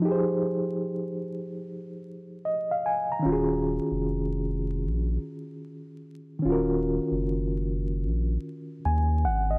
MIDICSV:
0, 0, Header, 1, 3, 480
1, 0, Start_track
1, 0, Tempo, 800000
1, 25, Time_signature, 4, 2, 24, 8
1, 5751, End_track
2, 0, Start_track
2, 0, Title_t, "Reed electric piano"
2, 0, Program_c, 0, 4
2, 0, Control_c, 0, 64, 127
2, 0, Note_on_c, 0, 53, 70
2, 11, Note_on_c, 0, 63, 62
2, 32, Note_on_c, 0, 67, 64
2, 51, Note_on_c, 0, 68, 60
2, 69, Note_on_c, 0, 72, 71
2, 1472, Note_on_c, 0, 75, 58
2, 1616, Note_off_c, 0, 75, 0
2, 1629, Note_on_c, 0, 77, 65
2, 1705, Note_off_c, 0, 77, 0
2, 1715, Note_on_c, 0, 80, 69
2, 1858, Note_off_c, 0, 80, 0
2, 1870, Note_on_c, 0, 82, 63
2, 1905, Note_off_c, 0, 53, 0
2, 1914, Note_off_c, 0, 63, 0
2, 1916, Note_on_c, 0, 51, 67
2, 1924, Note_off_c, 0, 67, 0
2, 1934, Note_off_c, 0, 68, 0
2, 1935, Note_on_c, 0, 61, 65
2, 1943, Note_off_c, 0, 72, 0
2, 1953, Control_c, 0, 64, 0
2, 1954, Note_on_c, 0, 65, 60
2, 1973, Note_on_c, 0, 66, 58
2, 1993, Note_on_c, 0, 68, 76
2, 2042, Control_c, 0, 64, 127
2, 2093, Note_off_c, 0, 82, 0
2, 3826, Note_off_c, 0, 51, 0
2, 3835, Note_on_c, 0, 51, 63
2, 3836, Note_off_c, 0, 61, 0
2, 3845, Note_off_c, 0, 65, 0
2, 3854, Note_on_c, 0, 61, 60
2, 3855, Note_off_c, 0, 66, 0
2, 3865, Note_off_c, 0, 68, 0
2, 3873, Note_on_c, 0, 65, 67
2, 3893, Note_on_c, 0, 66, 64
2, 3912, Note_on_c, 0, 70, 72
2, 5266, Note_off_c, 0, 51, 0
2, 5275, Note_off_c, 0, 61, 0
2, 5285, Note_off_c, 0, 65, 0
2, 5295, Note_off_c, 0, 66, 0
2, 5304, Note_off_c, 0, 70, 0
2, 5311, Note_on_c, 0, 80, 57
2, 5536, Note_off_c, 0, 80, 0
2, 5549, Note_on_c, 0, 78, 69
2, 5695, Note_off_c, 0, 78, 0
2, 5703, Note_on_c, 0, 75, 59
2, 5751, Note_off_c, 0, 75, 0
2, 5751, End_track
3, 0, Start_track
3, 0, Title_t, "Sub bass"
3, 0, Program_c, 1, 38
3, 1951, Note_on_c, 1, 27, 89
3, 2277, Note_off_c, 1, 27, 0
3, 2347, Note_on_c, 1, 29, 90
3, 2914, Note_on_c, 1, 34, 83
3, 2923, Note_off_c, 1, 29, 0
3, 3109, Note_off_c, 1, 34, 0
3, 3870, Note_on_c, 1, 27, 96
3, 4196, Note_off_c, 1, 27, 0
3, 4267, Note_on_c, 1, 30, 74
3, 4831, Note_on_c, 1, 34, 98
3, 4840, Note_off_c, 1, 30, 0
3, 5027, Note_off_c, 1, 34, 0
3, 5311, Note_on_c, 1, 39, 94
3, 5550, Note_on_c, 1, 32, 84
3, 5559, Note_off_c, 1, 39, 0
3, 5747, Note_off_c, 1, 32, 0
3, 5751, End_track
0, 0, End_of_file